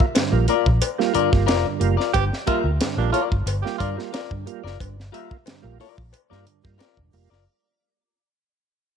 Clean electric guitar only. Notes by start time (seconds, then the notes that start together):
0.33 muted clean electric guitar stroke
0.49 F4 A#4 D5
0.67 muted clean electric guitar stroke
0.82 muted clean electric guitar stroke
0.99 muted clean electric guitar stroke
1.14 F4 A#4 D5
1.31 muted clean electric guitar stroke
1.46 F4 A#4 D5
1.80 muted clean electric guitar stroke
1.97 F4 A#4 D5
2.47 F4 A#4 E5
2.97 muted clean electric guitar stroke
3.12 F4 A#4 D5
3.30 muted clean electric guitar stroke
3.46 muted clean electric guitar stroke
3.64 muted clean electric guitar stroke
3.79 F4 A#4 D5
3.97 muted clean electric guitar stroke
4.13 F4 A#4 D5
4.46 muted clean electric guitar stroke
4.64 F4 A#4 D5
5.12 F4 A#4 E5
5.64 muted clean electric guitar stroke
5.80 F4 A#4 D5
5.97 muted clean electric guitar stroke
6.12 muted clean electric guitar stroke
6.30 F4 A#4 D5
6.46 muted clean electric guitar stroke
6.64 muted clean electric guitar stroke
6.78 F4 A#4 D5
7.14 muted clean electric guitar stroke
7.30 F4 A#4 D5